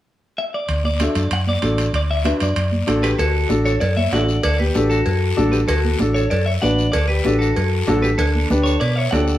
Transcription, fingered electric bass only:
0.69 D2
1.16 F#2
1.31 F#2
1.63 A1
1.93 D2
2.41 F#2
2.56 F#2
2.87 A1
3.19 D2
3.50 A1
3.81 F#2
4.13 A1
4.44 D2
4.76 A1
5.06 F#2
5.37 A1
5.68 D2
6.00 A1
6.31 F#2
6.62 A1
6.94 D2
7.26 A1
7.57 F#2
7.88 A1
8.18 D2
8.51 D2
8.81 B2
9.13 D2

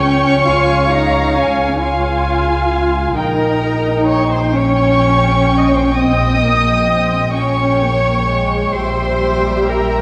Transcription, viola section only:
Already playing: C#4
0.46 F4
0.92 D#4
1.36 C#4
1.81 F4
3.17 D#4
4.54 C#4
5.94 C4
6.41 A#3
6.87 C4
7.34 C#4
7.81 A#3
8.27 G#3
8.76 G3

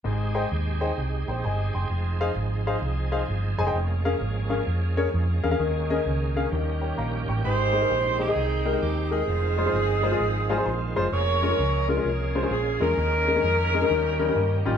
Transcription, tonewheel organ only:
0.04 G#3 C4 D#4 G4 G#4
1.90 F3
3.75 A#3 C#4
5.60 D#3 A#3 C#4
6.51 G3 G4
7.43 D#3 G#3 C4 G5
9.28 F3 F4
11.12 F3 G#3 A#3 C#4 G#4
12.98 D#3 A#3
13.88 G3 A#3 G4

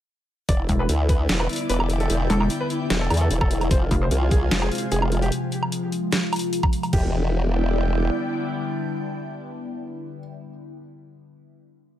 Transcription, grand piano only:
0.49 D5
0.59 E4
0.69 E4
0.79 B4
0.89 E4
1.00 E4
1.09 B4
1.20 E4
1.29 E4
1.40 B4
1.49 E4
1.60 E4
1.70 B4
1.80 E4
1.90 E4
2.00 A4
2.10 E4
2.20 E4
2.30 A4
2.40 E4
2.50 E4
2.60 B4
2.70 E4
2.81 E4
2.90 E4
3.01 A4
3.10 E4
3.21 A4
3.30 E4
3.41 A4
3.51 E4
3.61 E4
3.71 C5
3.81 F4
3.91 F4
4.01 C5
4.11 F4
4.22 F4
4.31 G#4
4.42 F4
4.51 F4
4.62 G#4
4.72 F4
4.82 F4
4.92 G#4
5.02 F4
5.12 F4
5.22 G4
6.93 G4

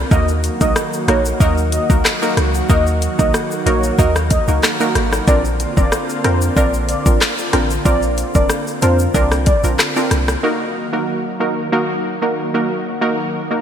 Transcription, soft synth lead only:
0.11 D#5
0.61 D#5
1.08 C#5
1.41 D#5
1.73 D#5
2.69 D#5
3.19 D#5
3.66 C#5
3.98 D#5
4.30 D#5
5.27 D5
5.77 D5
6.24 C5
6.56 D5
6.88 D5
7.85 D5
8.35 D5
8.82 C5
9.15 D5
9.46 D5

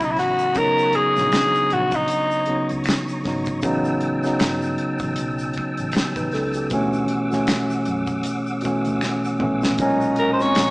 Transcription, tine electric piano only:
Already playing: C#3 F#3 B3 C#4
0.55 C#3 F#3 B3 D#4
1.15 C#3 F#3 B3 D4
1.25 D#4
2.47 C#3 F#3 B3 D#4
3.24 C#3 F#3 B3 D#4
3.63 C#3 F#3 B3 D#4
4.23 C#3 F#3 B3 D#4
5.95 B3 G4
6.17 D#4 B4
6.33 C#4 A4
6.55 B3 G4
6.70 B2 E3 A3 C#4
7.30 B2 E3 A3 C#4
8.62 B2 E3 A3 C#4
9.39 E3 A3 B3 C#4
9.78 A#2 D#3 G#3 C#4
10.38 A#2 D#3 G#3 C4
10.48 C#4

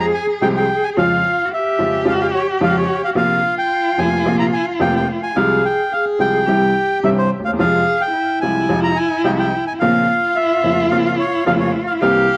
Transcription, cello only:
Already playing: G#4
0.97 F4
1.45 F#4
1.52 G4
3.17 F4
5.35 G#4
5.91 G#4
6.46 G4
7.58 G#4
8.12 E4
9.72 E4
9.79 F4
12.01 G4

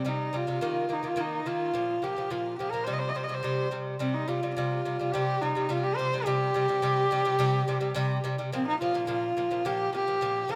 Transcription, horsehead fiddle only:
0.08 D#4
0.36 F4
0.93 D#4
1.08 F4
1.20 D#4
1.46 F4
2.03 G4
2.31 F4
2.58 G4
2.71 A#4
2.84 C5
2.93 D#5
2.99 C5
3.09 D#5
3.16 C5
3.23 D#5
3.34 C5
4.00 C4
4.14 D#4
4.27 F4
4.54 F4
5.12 G4
5.42 D#4
5.70 F4
5.83 G4
5.96 C5
6.25 G4
8.54 C4
8.67 D#4
8.80 F4
9.08 F4
9.66 G4
9.95 G4
10.52 A#4

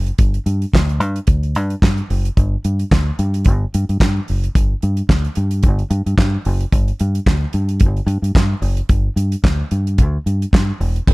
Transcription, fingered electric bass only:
Already playing: F#1
0.19 G1
0.46 G2
0.74 D2
1.00 G2
1.28 D2
1.56 G2
1.82 G2
2.10 F#1
2.37 G1
2.65 G2
2.92 D2
3.19 G2
3.46 G1
3.74 G2
3.89 G2
4.01 G2
4.30 F#1
4.56 G1
4.83 G2
5.09 D2
5.37 G2
5.64 G1
5.90 G2
6.06 G2
6.18 G2
6.46 F#1
6.73 G1
7.01 G2
7.27 D2
7.54 G2
7.81 G1
8.06 G2
8.22 G2
8.35 G2
8.62 F#1
8.89 G1
9.16 G2
9.44 D2
9.71 G2
9.99 D2
10.26 G2
10.53 G2
10.80 E1
11.08 F1

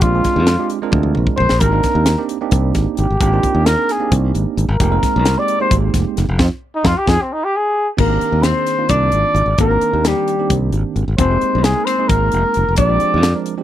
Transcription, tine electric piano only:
0.02 G#3 C4 D4 F4 G4
0.14 G#3 C4 D4 F4 G#4
0.59 G#3 C4 D4 F4 G4
0.82 G#3 C4 D4 F4 A#4
1.60 A#3 C4 D4 D#4 G4
1.72 A#3 C4 D4 D#4 A#4
2.18 A#3 C4 D4 D#4 G4
2.41 A#3 C4 D4 D#4 G4
3.21 A#3 C4 D4 D#4 F4
3.32 A#3 C4 D4 D#4 F4
3.77 A#3 C4 D4 D#4 G#4
4.00 A#3 C4 D4 D#4 G4
4.80 G#3 A#3 C4 D#4 G4
4.91 G#3 A#3 C4 D#4 A#4
5.37 G#3 A#3 C4 D#4 G4
5.60 G#3 A#3 C4 D#4 G4
6.38 C4 D#4 F4
6.84 C4 D#4 F4
7.06 C4 D#4 F4
7.97 D#3 A#3 C4 D4 G4
8.08 D#3 A#3 C4 D4 G4
8.56 D#3 A#3 C4 D4 G#4
8.78 D#3 A#3 C4 D4 F4
9.59 D#3 A#3 C4 D4 G4
9.70 D#3 A#3 C4 D4 A#4
10.16 D#3 A#3 C4 D4 G4
10.39 D#3 A#3 C4 D4 G4
11.18 G#3 A#3 C4 D#4 G4
11.30 G#3 A#3 C4 D#4 G4
11.75 G#3 A#3 C4 D#4 A#4
11.98 G#3 A#3 C4 D#4 G#4
12.77 F3 G#3 C4 D4 G4
12.88 F3 G#3 C4 D4 G4
13.35 F3 G#3 C4 D4 A#4
13.57 F3 G#3 C4 D4 G4

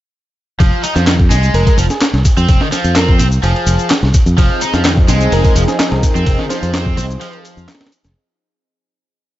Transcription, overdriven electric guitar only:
0.60 F3
0.83 D#4
0.96 F3
1.07 D#3
1.30 G#3
1.78 F3
2.38 C4
2.61 D#3
2.73 F3
2.96 C4
3.20 C4
3.43 F3
4.38 F3
4.62 D#4
4.74 F3
4.85 D#3
5.09 G#3
5.56 F3
6.16 C4
6.39 D#3
6.50 F3
6.74 C4
6.97 C4
7.21 F3

